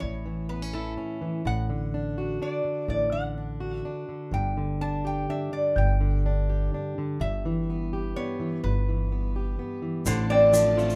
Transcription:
Already playing: E4
0.00 A1 A2 C#5
0.26 E3
0.49 B3 B4
0.62 C#4
0.73 E4 A4
0.97 C#4
1.21 E3
1.45 A1 A2 F#5
1.70 D3
1.94 D4
2.18 F#4
2.42 D4 D5
2.65 D3
2.88 A1 A2 D5
3.12 D3 F#5
3.38 D4
3.60 F#4
3.78 E5
3.85 D4
4.09 D3
4.31 G1 G2 G5
4.57 D3
4.81 D4 A5
5.05 G4 G5
5.30 D4 E5
5.53 D3 D5
5.76 G1 G2 G5
6.01 D3
6.26 D4
6.50 G4
6.74 D4
6.98 D3
7.20 G1 G2 E5
7.45 E3
7.70 B3
7.93 G4
8.16 B3 C#5
8.40 E3
8.64 G1 G2 B4
8.89 E3
9.12 B3
9.36 G4
9.59 B3
9.82 E3
10.06 A1 A2 D3 C4 F4 C5 D5 A5, shaker
10.30 C4 D4 D5
10.53 F3 D4, shaker
10.77 A3 F4, shaker
10.90 shaker

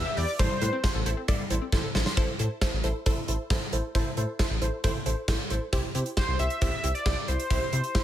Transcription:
Already playing: E4 G4 B4 E5
0.06 G4
0.17 E2 E4 G4 B4 D5 G6, open hi-hat
0.28 D6
0.39 A1 G3 E4 A4 C5, kick, closed hi-hat
0.50 G3
0.61 A2 G3 E4 A4 B4, closed hi-hat
0.73 C4
0.84 G3 E4 A4 C5, kick, snare, closed hi-hat
0.95 A1 A4
1.06 A1 E4 A4 C5, closed hi-hat
1.17 C4
1.28 A1 G3 E4 A4 D5, kick, closed hi-hat
1.39 G3
1.50 A1 G3 E4 A4 C5, closed hi-hat
1.62 C4
1.72 A1 G3 E4 A4 C5, kick, snare
1.84 A4
1.95 A1 E4 A4 C5 A6, snare
2.06 C6, snare
2.17 A1 E4 A4 C5, kick, closed hi-hat
2.39 A2 E4 A4 C5, closed hi-hat
2.61 E4 A4 C5, kick, snare, closed hi-hat
2.73 A1
2.84 A1 E4 A4 C5, closed hi-hat
3.06 A1 E4 A4 C5, kick, closed hi-hat
3.28 A1 E4 A4 C5, closed hi-hat
3.50 A1 E4 A4 C5, kick, snare, closed hi-hat
3.73 A1 E4 A4 C5, closed hi-hat
3.95 A1 E4 A4 C5, kick, closed hi-hat
4.17 A2 E4 A4 C5, closed hi-hat
4.39 E4 A4 C5, kick, snare, closed hi-hat
4.51 A1
4.62 A1 E4 A4 C5, closed hi-hat
4.84 A1 E4 A4 C5, kick, closed hi-hat
5.06 A1 E4 A4 C5, closed hi-hat
5.28 A1 E4 A4 C5, kick, snare, closed hi-hat
5.50 A1 E4 A4 C5, closed hi-hat
5.73 C2 E4 G4 C5, kick, closed hi-hat
5.95 C3 E4 G4 C5, closed hi-hat
6.06 closed hi-hat
6.17 E4 G4 C5, kick, snare
6.28 C2
6.39 C2 E4 G4 C5 E5, closed hi-hat
6.50 closed hi-hat
6.61 C2 E4 G4 C5 E5, kick, closed hi-hat
6.84 C2 E4 G4 C5, closed hi-hat
6.95 D5, closed hi-hat
7.06 C2 E4 G4 C5, kick, snare
7.28 C2 E4 G4 C5, closed hi-hat
7.40 closed hi-hat
7.50 C2 E4 G4 C5, kick, closed hi-hat
7.73 C3 E4 G4 C5, closed hi-hat
7.84 closed hi-hat
7.95 E4 G4 C5, kick, snare

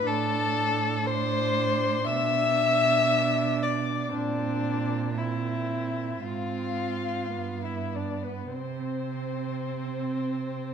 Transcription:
0.07 A2 D4 A4 A5
1.05 D4 C5 C6
2.05 B2 D4 E5 E6
3.62 D5 D6
4.12 A#2 C4 D4 D5
5.16 C4 E4 E5
6.23 G#2 C4 F4 F5
7.35 G2 B3
7.65 E4 E5
7.95 D4 D5
8.23 B3 B4
8.52 C3 C4 C5

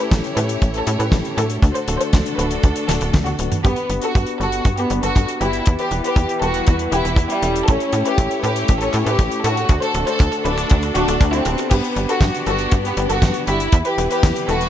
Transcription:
Already playing: A3 E4 G4 C#5
0.00 C#4 E4 G4 A4 B4
0.11 A1, kick, snare, closed hi-hat
0.24 closed hi-hat
0.37 A2 C#4 E4 G4 A4 B4, closed hi-hat
0.49 closed hi-hat
0.62 A1, kick, closed hi-hat
0.74 A4, closed hi-hat
0.87 A2 C#4 E4 G4 A4, closed hi-hat
1.00 A2 B4, closed hi-hat
1.12 A1, kick, snare, closed hi-hat
1.25 closed hi-hat
1.37 A2 A3 D4 F#4 A4, closed hi-hat
1.50 closed hi-hat
1.62 D2 D3 D4 F#4 A4, kick, closed hi-hat
1.75 C5, closed hi-hat
1.88 D1 A3 D4 F#4 A4, closed hi-hat
2.00 A3 D4 F#4 A4 C5, closed hi-hat
2.13 D2, kick, snare, closed hi-hat
2.26 closed hi-hat
2.38 D1 A3 D4 F#4 A4 B4, closed hi-hat
2.51 closed hi-hat
2.63 D2, kick, closed hi-hat
2.76 closed hi-hat
2.88 D1 A3 D4 F#4 A4, snare, closed hi-hat
3.01 D1, closed hi-hat
3.13 D2, kick, snare, closed hi-hat, high tom
3.26 F#4, closed hi-hat, high tom
3.39 D1 A3 D4 F#4 B4, closed hi-hat
3.52 closed hi-hat, mid tom
3.64 G2 G3 B3 D4 G4, kick, closed hi-hat, mid tom
3.76 closed hi-hat
3.90 G1 B3 D4 G4 B4, closed hi-hat
4.02 B3 D4 F#4 G4 A4 B4, closed hi-hat
4.15 G2, kick, closed hi-hat, mid tom
4.26 closed hi-hat
4.40 G1 B3 D4 F#4 G4 A4 B4, closed hi-hat
4.52 closed hi-hat
4.65 G2, kick, closed hi-hat, mid tom
4.77 B3 G4, closed hi-hat
4.90 G1 B3 D4 G4 B4, closed hi-hat
5.03 G1 F#4 A4, closed hi-hat
5.15 G2, kick, closed hi-hat, mid tom
5.29 closed hi-hat
5.41 G1 B3 E4 G4 B4, closed hi-hat
5.53 closed hi-hat
5.66 E2 E3 E4 B4, kick, closed hi-hat, mid tom
5.79 G4 B4, closed hi-hat
5.91 E1 B3 E4 G4 B4, closed hi-hat
6.04 B3 E4 G4 B4, closed hi-hat
6.16 E2, kick, closed hi-hat, mid tom
6.29 closed hi-hat
6.42 E1 G3 B3 E4 F#4 A4 B4, closed hi-hat
6.54 closed hi-hat
6.67 E2, kick, closed hi-hat, mid tom
6.79 closed hi-hat
6.92 E1 B3 E4 G4 B4, closed hi-hat
7.05 E1, closed hi-hat
7.16 E2, kick, closed hi-hat, mid tom
7.30 G3 E4, closed hi-hat
7.42 E1 C#4 E4 G4 A4, closed hi-hat
7.56 closed hi-hat
7.68 A1 A3 C#4 G4 A4 C#5, kick, closed hi-hat, mid tom
7.80 closed hi-hat
7.92 A2 C#4 E4 G4 A4, closed hi-hat, mid tom
8.05 C#4 E4 G4 A4 B4, closed hi-hat
8.18 A1, kick, closed hi-hat, mid tom
8.31 closed hi-hat
8.43 A2 C#4 E4 G4 A4 B4, closed hi-hat, mid tom
8.56 closed hi-hat
8.68 A1, kick, closed hi-hat, mid tom
8.81 C#4 A4, closed hi-hat
8.93 A2 C#4 E4 G4 A4, closed hi-hat, mid tom
9.06 A2 G4 B4, closed hi-hat
9.19 A1, kick, closed hi-hat, mid tom
9.32 closed hi-hat
9.44 A2 A3 D4 F#4 A4, closed hi-hat, mid tom
9.57 closed hi-hat
9.69 D2 D3 D4 F#4 A4, kick, closed hi-hat, mid tom
9.82 A4 C5, closed hi-hat, mid tom
9.94 D1 A3 D4 F#4 A4, closed hi-hat, mid tom
10.07 A3 D4 F#4 A4 C5, closed hi-hat, mid tom
10.19 D2, kick, closed hi-hat, mid tom
10.32 closed hi-hat, mid tom
10.45 D1 A3 D4 F#4 A4 B4, closed hi-hat, mid tom
10.58 closed hi-hat, mid tom
10.70 D2, kick, closed hi-hat, mid tom
10.83 closed hi-hat, mid tom
10.95 D1 A3 D4 F#4 A4, closed hi-hat, mid tom
11.08 D1, closed hi-hat, mid tom
11.21 D2, kick, closed hi-hat, mid tom
11.33 C4 E4, closed hi-hat, mid tom
11.45 D1 B3 D4 G4 B4, closed hi-hat, mid tom
11.58 closed hi-hat, mid tom
11.71 G2 B3 D4 G4, kick, closed hi-hat, crash
11.84 closed hi-hat
11.96 G1 B3 D4 G4 B4, closed hi-hat
12.09 B3 D4 F#4 G4 A4 B4, closed hi-hat
12.21 G2, kick, snare, closed hi-hat
12.35 closed hi-hat
12.46 G1 B3 D4 F#4 G4 A4 B4, closed hi-hat
12.59 closed hi-hat
12.71 G2, kick, closed hi-hat
12.85 B3 G4, closed hi-hat
12.97 G1 B3 D4 G4 B4, closed hi-hat
13.10 G1 F#4 A4, closed hi-hat
13.22 G2, kick, snare, closed hi-hat
13.34 closed hi-hat
13.47 G1 B3 D4 E4 G4 D5, closed hi-hat
13.60 closed hi-hat
13.72 E2 E3 G3 E4 B4, kick, closed hi-hat
13.85 G4 B4, closed hi-hat
13.98 E1 B3 E4 G4 B4, closed hi-hat
14.10 B3 E4 G4 B4, closed hi-hat
14.23 E2, kick, snare, closed hi-hat
14.36 closed hi-hat
14.48 E1 G3 B3 E4 F#4 A4 B4, closed hi-hat
14.61 closed hi-hat

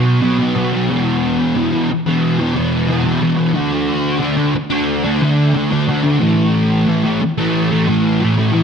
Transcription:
Already playing: B2 F#3 B3
0.21 B2 F#3 B3
0.38 F#3 B3
0.55 B2 F#3 B3
0.73 F#3 B3
0.90 E2 B2 E3
1.55 E2 B2 E3
1.72 B2 E3
1.90 muted distorted electric guitar stroke
2.06 B2 E3
2.39 B2 E3
2.54 E2 B2 E3
2.88 E2 B2 E3
3.04 B2 E3
3.21 E2 B2 E3
3.36 B2 E3
3.53 D3 A3 D4
4.19 D3 A3 D4
4.37 A3 D4
4.54 muted distorted electric guitar stroke
4.70 A3 D4
5.04 A3 D4
5.21 D3 A3 D4
5.54 D3 A3 D4
5.71 A3 D4
5.88 D3 A3 D4
6.03 A3 D4
6.19 A2 E3 A3
6.87 A2 E3 A3
7.04 E3 A3
7.21 muted distorted electric guitar stroke
7.38 E3 A3
7.70 E3 A3
7.87 A2 E3 A3
8.21 A2 E3 A3
8.37 E3 A3
8.53 A2 E3 A3

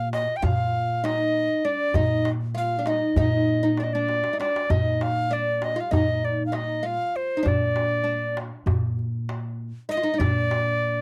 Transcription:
Already playing: A#2 F4
0.13 D#5, darbuka tek
0.36 G5
0.42 A#2 F4 F5, darbuka dum
0.75 darbuka ka
1.04 D#4 D#5, darbuka tek
1.65 D4 D5, darbuka ka
1.94 A#2 D#4 D#5, darbuka dum
2.25 darbuka tek
2.41 darbuka ka
2.55 F4 F5, darbuka ka
2.79 D4
2.86 D#4 D#5, darbuka tek
3.16 A#2 D#4 D#5, darbuka dum
3.48 darbuka ka
3.63 D#4
3.77 D4 D5, darbuka tek
3.84 D#5
3.93 D4 D5
4.09 darbuka tek
4.24 darbuka ka
4.33 D#4
4.40 D4 D5, darbuka tek
4.56 darbuka ka
4.70 A#2 D#4 D#5, darbuka dum
5.01 F5, darbuka tek
5.16 darbuka ka
5.31 D4 D5, darbuka ka
5.62 D#5, darbuka tek
5.76 F4
5.80 F5
5.91 A#2 D#4 D#5, darbuka dum
6.23 D5, darbuka ka
6.46 F5
6.52 D#4 D#5, darbuka tek
6.83 F4 F5
7.15 C5, darbuka ka
7.37 D#4
7.43 A#2 D4, darbuka dum
7.48 D5
7.76 darbuka tek
7.91 darbuka ka
8.04 D4, darbuka ka
8.37 darbuka tek
8.66 A#2, darbuka dum
8.99 darbuka ka
9.29 darbuka tek
9.89 D#4 D#5, darbuka ka
9.97 F4
10.03 D#4
10.14 D#4
10.18 A#2 D4 D5, darbuka dum
10.51 darbuka tek
10.67 darbuka ka
10.82 darbuka ka

